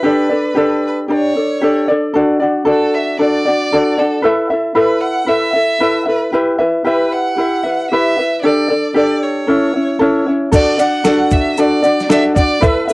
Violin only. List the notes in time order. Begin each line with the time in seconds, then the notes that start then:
Already playing: B4
0.87 B4
1.14 C#5
2.70 A4
2.95 E5
3.20 D5
3.99 A4
4.77 B4
5.01 F#5
5.28 E5
6.09 B4
6.87 B4
7.12 F#5
7.90 E5
8.42 D5
8.96 D5
9.23 C#5
10.54 D5
10.79 F#5
11.32 E5
11.60 D5
12.11 E5
12.37 D5
12.63 B4
12.90 B4